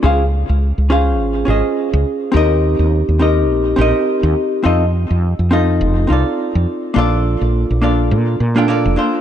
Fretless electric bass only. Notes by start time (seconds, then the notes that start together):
0.04 C#2
0.49 C#2
0.78 C#2
1.19 G#1
1.48 G#1
1.93 C#2
2.34 D#2
2.79 D#2
3.09 D#2
3.50 A#1
3.78 A#1
4.23 D#2
4.65 F2
5.11 F2
5.39 F2
5.81 F1
6.10 C2
6.55 F2
6.96 A#1
7.41 A#1
7.70 A#1
8.11 A#2
8.40 A#2
8.85 F1